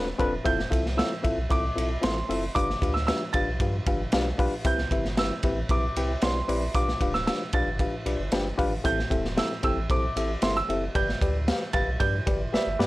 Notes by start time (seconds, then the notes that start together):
Already playing: D#1
0.18 E1 C4 D4 F4 A4 B4, kick, ride
0.44 F1 C4 E4 F4 A4 E5 G6, kick, ride
0.59 snare
0.70 C2 C4 E4 F4 A4 E5, kick, ride
0.86 snare
0.97 C4 E4 F4 A4 E5 E6, snare, ride
1.23 A1 C4 E4 F4 A4 E5, kick, ride
1.38 B1
1.50 C2 C4 E4 F4 A4 E5 D6, kick, ride
1.75 B1 C4 E4 F4 A4 E5, ride
2.02 A1 C4 E4 F4 A4 E5 C6, snare, ride
2.29 F#1 C4 E4 F4 A4 E5, open hi-hat, ride
2.55 G1 G2 D4 F4 G4 B4 F5 D6, kick, hi-hat pedal, ride
2.70 snare
2.82 D2 D4 F4 G4 B4 F5, kick, ride
2.94 E6, snare
3.07 D4 F4 G4 B4 E5 E6, snare, ride
3.33 G1 D4 F4 G4 B4 F5 A6, kick, ride
3.48 B1
3.60 G2 D4 F4 G4 B4 F5, kick, ride
3.86 G1 D4 F4 G4 B4 F5, kick, ride
4.12 B1 D4 F4 G4 B4 F5, snare, ride
4.38 B1 D4 F4 G4 B4 F5, kick, open hi-hat, ride
4.64 C2 C3 C4 E4 G4 B4 E5 G6, kick, hi-hat pedal, ride
4.78 snare
4.91 G1 C4 E4 G4 B4 E5, kick, ride
5.05 snare
5.17 C4 E4 G4 B4 E5 E6, snare, ride
5.43 A1 C4 E4 G4 B4 E5, kick, ride
5.69 B1 C4 E4 G4 B4 E5 D6, kick, ride
5.96 C2 C4 E4 G4 B4 G5, ride
6.22 B1 C4 E4 G4 B4 D5 C6, snare, ride
6.48 A#1 C4 E4 G4 B4 D5, open hi-hat, ride
6.74 B1 B2 D4 F4 G4 B4 F5 D6, kick, hi-hat pedal, ride
6.88 snare
7.01 D1 D4 F4 G4 B4 F5, kick, ride
7.14 E6, snare
7.27 D4 F4 G4 B4 F5 E6, snare, ride
7.53 B1 D4 F4 G4 B4 F5 A6, kick, ride
7.66 G1
7.79 D4 F4 G4 B4 F5, kick, ride
8.06 B1 D4 F4 G4 B4 D5, ride
8.19 G1
8.32 G1 D4 F4 G4 B4 G5, snare, ride
8.58 G#1 D4 F4 G4 B4 F5, kick, open hi-hat, ride
8.84 A1 A2 C4 E4 G4 A4 E5 G6, kick, hi-hat pedal, ride
8.99 snare
9.10 E1 C4 E4 G4 A4 E5, kick, ride
9.25 snare
9.37 C4 E4 G4 A4 E5 E6, snare, ride
9.63 G1 C4 E4 G4 A4 G5 E6, kick, ride
9.77 A1
9.90 B1 C4 E4 G4 A4 C5 D6, kick, ride
10.16 A1 C4 E4 G4 A4 E5, ride
10.42 G1 C4 E4 G4 A4 E5 C6, snare, ride
10.57 E6
10.69 F#1 C4 E4 G4 A4 E5, ride
10.95 G1 G2 G4 B4 D5 G6, kick, ride
11.09 snare
11.21 D2 G4 B4 D5, kick, ride
11.48 G4 B4 F5, snare, ride
11.73 G1 G4 B4 F5 A6, kick, ride
11.87 B1
12.00 G2 G4 B4 D5 G6, kick, ride
12.26 G1 G4 B4 D5, kick, ride
12.53 G1 G4 B4 D5 E5, snare
12.67 G1
12.79 G2 G4 B4 D5, snare